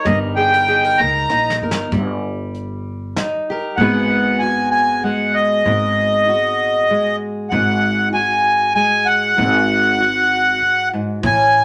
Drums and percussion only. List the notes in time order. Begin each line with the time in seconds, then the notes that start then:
0.06 kick, closed hi-hat
0.68 closed hi-hat
1.29 snare
1.50 snare
1.71 snare
1.92 kick, closed hi-hat
2.54 closed hi-hat
3.16 snare, closed hi-hat
11.23 kick, closed hi-hat